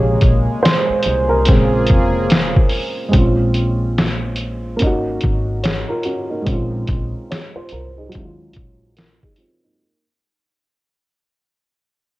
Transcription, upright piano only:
0, 0, Header, 1, 2, 480
1, 0, Start_track
1, 0, Key_signature, -5, "minor"
1, 0, Tempo, 833333
1, 1805, Time_signature, 4, 2, 24, 8
1, 7024, End_track
2, 0, Start_track
2, 0, Title_t, "Upright piano"
2, 0, Program_c, 0, 0
2, 0, Control_c, 0, 64, 127
2, 0, Note_on_c, 0, 48, 60
2, 0, Note_on_c, 0, 49, 54
2, 0, Note_on_c, 0, 56, 50
2, 0, Note_on_c, 0, 73, 85
2, 360, Note_on_c, 0, 72, 83
2, 376, Note_off_c, 0, 73, 0
2, 581, Note_off_c, 0, 49, 0
2, 582, Note_off_c, 0, 56, 0
2, 584, Note_off_c, 0, 48, 0
2, 743, Note_on_c, 0, 70, 88
2, 758, Note_off_c, 0, 72, 0
2, 842, Note_on_c, 0, 49, 56
2, 846, Note_on_c, 0, 56, 52
2, 849, Note_on_c, 0, 60, 61
2, 852, Control_c, 0, 64, 0
2, 956, Control_c, 0, 64, 127
2, 1539, Note_off_c, 0, 70, 0
2, 1541, Note_off_c, 0, 49, 0
2, 1543, Note_off_c, 0, 56, 0
2, 1544, Note_off_c, 0, 60, 0
2, 1777, Note_on_c, 0, 56, 64
2, 1795, Note_on_c, 0, 60, 67
2, 1812, Control_c, 0, 64, 0
2, 1815, Note_on_c, 0, 61, 58
2, 1833, Note_on_c, 0, 65, 77
2, 1917, Control_c, 0, 64, 127
2, 2732, Note_off_c, 0, 56, 0
2, 2741, Note_off_c, 0, 60, 0
2, 2745, Note_on_c, 0, 58, 77
2, 2751, Note_off_c, 0, 61, 0
2, 2760, Note_off_c, 0, 65, 0
2, 2763, Note_on_c, 0, 61, 64
2, 2774, Control_c, 0, 64, 0
2, 2783, Note_on_c, 0, 63, 76
2, 2802, Note_on_c, 0, 66, 83
2, 2883, Control_c, 0, 64, 127
2, 3226, Note_off_c, 0, 58, 0
2, 3235, Note_off_c, 0, 61, 0
2, 3245, Note_off_c, 0, 63, 0
2, 3245, Note_on_c, 0, 73, 61
2, 3248, Note_on_c, 0, 68, 42
2, 3254, Note_off_c, 0, 66, 0
2, 3382, Note_off_c, 0, 73, 0
2, 3383, Note_off_c, 0, 68, 0
2, 3393, Note_on_c, 0, 70, 70
2, 3397, Note_on_c, 0, 65, 53
2, 3482, Note_off_c, 0, 70, 0
2, 3484, Note_off_c, 0, 65, 0
2, 3484, Note_on_c, 0, 66, 63
2, 3489, Note_on_c, 0, 61, 61
2, 3621, Note_off_c, 0, 66, 0
2, 3624, Note_off_c, 0, 61, 0
2, 3627, Note_on_c, 0, 63, 58
2, 3632, Note_on_c, 0, 58, 53
2, 3698, Note_on_c, 0, 56, 65
2, 3719, Note_on_c, 0, 60, 60
2, 3733, Control_c, 0, 64, 0
2, 3736, Note_on_c, 0, 61, 60
2, 3755, Note_on_c, 0, 65, 74
2, 3838, Control_c, 0, 64, 127
2, 3856, Note_off_c, 0, 63, 0
2, 3859, Note_off_c, 0, 58, 0
2, 4208, Note_on_c, 0, 73, 60
2, 4211, Note_off_c, 0, 65, 0
2, 4212, Note_on_c, 0, 68, 45
2, 4344, Note_off_c, 0, 73, 0
2, 4345, Note_off_c, 0, 68, 0
2, 4353, Note_on_c, 0, 72, 67
2, 4358, Note_on_c, 0, 65, 55
2, 4442, Note_off_c, 0, 72, 0
2, 4445, Note_off_c, 0, 65, 0
2, 4448, Note_on_c, 0, 70, 64
2, 4453, Note_on_c, 0, 65, 52
2, 4584, Note_off_c, 0, 70, 0
2, 4586, Note_off_c, 0, 65, 0
2, 4594, Note_on_c, 0, 68, 58
2, 4597, Note_on_c, 0, 63, 57
2, 4652, Note_off_c, 0, 56, 0
2, 4660, Note_on_c, 0, 54, 74
2, 4663, Note_off_c, 0, 60, 0
2, 4672, Note_off_c, 0, 61, 0
2, 4678, Note_on_c, 0, 56, 64
2, 4692, Control_c, 0, 64, 0
2, 4697, Note_on_c, 0, 61, 68
2, 4715, Note_on_c, 0, 64, 65
2, 4745, Note_off_c, 0, 64, 0
2, 4751, Note_on_c, 0, 65, 83
2, 4790, Control_c, 0, 64, 127
2, 4820, Note_off_c, 0, 68, 0
2, 4821, Note_off_c, 0, 63, 0
2, 5158, Note_off_c, 0, 65, 0
2, 5162, Note_off_c, 0, 61, 0
2, 5165, Note_on_c, 0, 70, 58
2, 5167, Note_on_c, 0, 65, 39
2, 5302, Note_off_c, 0, 70, 0
2, 5303, Note_off_c, 0, 65, 0
2, 5314, Note_on_c, 0, 68, 67
2, 5317, Note_on_c, 0, 63, 51
2, 5401, Note_on_c, 0, 65, 65
2, 5403, Note_off_c, 0, 68, 0
2, 5405, Note_off_c, 0, 63, 0
2, 5405, Note_on_c, 0, 60, 56
2, 5540, Note_off_c, 0, 65, 0
2, 5542, Note_off_c, 0, 60, 0
2, 5550, Note_on_c, 0, 63, 53
2, 5554, Note_on_c, 0, 58, 47
2, 5613, Note_off_c, 0, 54, 0
2, 5622, Note_off_c, 0, 56, 0
2, 5652, Control_c, 0, 64, 0
2, 5778, Note_off_c, 0, 63, 0
2, 5780, Note_off_c, 0, 58, 0
2, 7024, End_track
0, 0, End_of_file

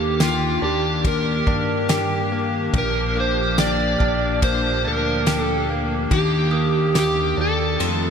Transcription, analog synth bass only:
0, 0, Header, 1, 2, 480
1, 0, Start_track
1, 0, Tempo, 845070
1, 1552, Time_signature, 4, 2, 24, 8
1, 4601, End_track
2, 0, Start_track
2, 0, Title_t, "Analog synth bass"
2, 0, Program_c, 0, 38
2, 0, Note_on_c, 0, 39, 102
2, 331, Note_off_c, 0, 39, 0
2, 352, Note_on_c, 0, 39, 94
2, 809, Note_off_c, 0, 39, 0
2, 835, Note_on_c, 0, 43, 92
2, 1531, Note_off_c, 0, 43, 0
2, 1554, Note_on_c, 0, 34, 105
2, 2251, Note_off_c, 0, 34, 0
2, 2274, Note_on_c, 0, 34, 105
2, 2756, Note_on_c, 0, 38, 83
2, 2765, Note_off_c, 0, 34, 0
2, 3452, Note_off_c, 0, 38, 0
2, 3471, Note_on_c, 0, 39, 101
2, 4169, Note_off_c, 0, 39, 0
2, 4190, Note_on_c, 0, 39, 105
2, 4419, Note_off_c, 0, 39, 0
2, 4432, Note_on_c, 0, 41, 96
2, 4601, Note_off_c, 0, 41, 0
2, 4601, End_track
0, 0, End_of_file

